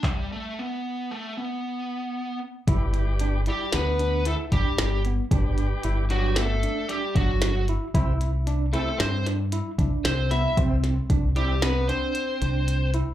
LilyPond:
<<
  \new Staff \with { instrumentName = "Lead electric guitar" } { \time 5/4 \key g \major \tempo 4 = 114 g8 a8 b4 a8 b2 r8 | r4. g'8 b'4 a'8 g'4 r8 | r4. fis'8 a'4 g'8 fis'4 r8 | r4. a'8 c''8 r4. c''8 e''8 |
r4. g'8 b'8 c''2 r8 | }
  \new Staff \with { instrumentName = "Tonewheel organ" } { \time 5/4 \key g \major r1 r4 | <g g' b' d''>4. r2. r8 | <g g' b' d''>4. <g g' b' d''>8 r2. | <c c' g' e''>8 r4 <c c' g' e''>8 r2. |
<c c' g' e''>8 r4 <c c' g' e''>8 r2. | }
  \new Staff \with { instrumentName = "Tine electric piano" } { \time 5/4 \key g \major r1 r4 | e'4 d'8 e'8 d'8 d'8 e'8 d'4 b8 | d'4 e'8 d'8 b8 d'4 d'4 e'8 | e'4 d'8 e'8 d'8 d'8 e'8 d'4 b8 |
c'4 d'8 e'8 c'8 d'4 d'4 e'8 | }
  \new Staff \with { instrumentName = "Clean electric guitar" } { \time 5/4 \key g \major r1 r4 | r4. g8 b4 a8 g4 r8 | r4. fis8 a4 g8 fis4 r8 | r4. a8 c'8 r4. c'8 e'8 |
r4. g8 b8 c'2 r8 | }
  \new Staff \with { instrumentName = "Fingered electric bass" } { \clef bass \time 5/4 \key g \major r1 r4 | g,,2 d,4. g,,16 r16 g,,4 | g,,4 g,,2 r8 g,,4. | c,2 g,4. c,16 r16 c,4 |
c,4 c,2 r8 c,4. | }
  \new DrumStaff \with { instrumentName = "Drums" } \drummode { \time 5/4 <hc bd>4 r4 r4 r4 r4 | <hh bd>8 hh8 hh8 hh8 <hh sn>8 hh8 hh8 <hh bd>8 <hh sn>8 hh8 | <hh bd>8 hh8 hh8 hh8 <hh sn>8 hh8 hh8 <hh bd>8 <hh sn>8 hh8 | <hh bd>8 hh8 hh8 hh8 <hh sn>8 <hh sn>8 hh8 <hh bd>8 <hh sn>8 <hh sn>8 |
<hh bd>8 <hh sn>8 <hh bd>8 hh8 <hh sn>8 hh8 hh8 hh8 hh8 hh8 | }
>>